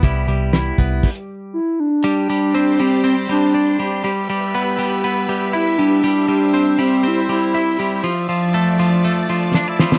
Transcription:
Already playing: clean electric guitar B3
0.03 picked electric bass C2, clean electric guitar G3 E4, kick, closed hi-hat
0.27 picked electric bass C2, clean electric guitar G3, closed hi-hat
0.53 clean electric guitar E4, snare, closed hi-hat
0.78 picked electric bass C2, clean electric guitar B3, kick, closed hi-hat
1.03 kick, crash
1.53 soft synth lead E4
1.80 soft synth lead D4
2.04 clean electric guitar G3, string machine G4 C5 D5 C6
2.30 clean electric guitar G3
2.54 clean electric guitar C4
2.80 clean electric guitar G3, soft synth lead C4
3.04 soft synth lead C4, clean electric guitar C4
3.29 clean electric guitar G3, soft synth lead D4
3.54 clean electric guitar D4
3.80 clean electric guitar G3
4.04 clean electric guitar G3, string machine G4 B4 E5 B5
4.30 clean electric guitar G3
4.55 clean electric guitar B3
4.79 clean electric guitar G3
5.04 clean electric guitar B3
5.29 clean electric guitar G3
5.53 clean electric guitar E4, soft synth lead E4
5.78 clean electric guitar G3, soft synth lead D4
6.03 clean electric guitar G3, string machine C5 C6
6.28 clean electric guitar G3
6.54 clean electric guitar C4
6.79 clean electric guitar G3, soft synth lead C4
7.03 clean electric guitar C4, soft synth lead E4
7.29 clean electric guitar G3, soft synth lead E4
7.54 clean electric guitar E4
7.79 clean electric guitar G3
8.03 string machine F3 D5 A5, clean electric guitar F3
8.29 clean electric guitar F3
8.54 clean electric guitar A3
8.79 clean electric guitar F3
9.04 clean electric guitar A3
9.30 clean electric guitar F3
9.54 clean electric guitar D4, snare
9.68 clean electric guitar E4
9.79 clean electric guitar F3, snare
9.92 snare

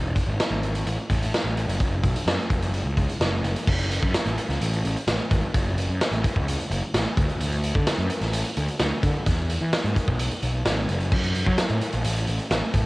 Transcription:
Already playing: picked electric bass E1
0.16 kick, closed hi-hat
0.27 picked electric bass G#1
0.40 snare, closed hi-hat
0.50 picked electric bass G#1
0.63 closed hi-hat
0.75 closed hi-hat
0.86 picked electric bass A1, closed hi-hat
1.10 picked electric bass A1, kick, closed hi-hat
1.23 closed hi-hat
1.34 snare, closed hi-hat
1.44 picked electric bass A1
1.57 closed hi-hat
1.67 picked electric bass F#1, closed hi-hat
1.80 picked electric bass F#1, kick, closed hi-hat
2.03 picked electric bass B1, kick, closed hi-hat
2.16 closed hi-hat
2.26 picked electric bass F#2, snare, closed hi-hat
2.50 picked electric bass F#1, kick, closed hi-hat
2.62 closed hi-hat
2.74 closed hi-hat
2.85 picked electric bass C#2
2.97 kick, closed hi-hat
3.09 closed hi-hat
3.20 picked electric bass F#1, snare, closed hi-hat
3.43 picked electric bass F#1, closed hi-hat
3.56 closed hi-hat
3.67 picked electric bass F#1, kick, crash
3.79 closed hi-hat
3.91 closed hi-hat
4.03 picked electric bass F#2, kick
4.14 snare, closed hi-hat
4.26 picked electric bass A1, closed hi-hat
4.38 closed hi-hat
4.49 picked electric bass C#2, snare, closed hi-hat
4.61 picked electric bass A1, closed hi-hat
4.73 closed hi-hat
4.84 picked electric bass A1, closed hi-hat
4.97 closed hi-hat
5.07 picked electric bass A1, snare, closed hi-hat
5.31 picked electric bass G#1, kick, closed hi-hat
5.54 picked electric bass F#1, kick, closed hi-hat
5.78 closed hi-hat
5.89 picked electric bass F#2
6.01 snare, closed hi-hat
6.11 picked electric bass A1, closed hi-hat
6.24 kick, closed hi-hat
6.36 picked electric bass C#2, kick
6.48 closed hi-hat
6.60 closed hi-hat
6.71 picked electric bass F#1, closed hi-hat
6.94 picked electric bass A1, snare, closed hi-hat
7.17 picked electric bass D2, kick, closed hi-hat
7.29 closed hi-hat
7.40 picked electric bass D2, closed hi-hat
7.53 closed hi-hat
7.64 closed hi-hat
7.75 picked electric bass D3, kick
7.87 snare, closed hi-hat
7.98 picked electric bass F#2, closed hi-hat
8.10 closed hi-hat
8.21 picked electric bass A1, snare, closed hi-hat
8.33 closed hi-hat
8.45 closed hi-hat
8.57 picked electric bass D2, closed hi-hat
8.68 closed hi-hat
8.79 picked electric bass D2, snare, closed hi-hat
9.03 picked electric bass D3, kick, closed hi-hat
9.26 picked electric bass E2, kick, closed hi-hat
9.50 closed hi-hat
9.61 picked electric bass E3
9.73 snare, closed hi-hat
9.84 picked electric bass G#2, closed hi-hat
9.96 kick, closed hi-hat
10.08 picked electric bass B1, kick
10.19 closed hi-hat
10.31 closed hi-hat
10.42 picked electric bass B1, closed hi-hat
10.65 picked electric bass G#1, snare, closed hi-hat
10.89 picked electric bass F#1, closed hi-hat
11.00 closed hi-hat
11.12 picked electric bass F#2, kick, crash
11.23 closed hi-hat
11.35 closed hi-hat
11.46 picked electric bass F#3, kick
11.58 snare, closed hi-hat
11.70 picked electric bass A2, closed hi-hat
11.81 closed hi-hat
11.93 picked electric bass A#1, closed hi-hat
12.05 picked electric bass A1, closed hi-hat
12.16 closed hi-hat
12.27 picked electric bass A1, closed hi-hat
12.39 closed hi-hat
12.51 picked electric bass A1, snare, closed hi-hat
12.74 picked electric bass A2, kick, closed hi-hat

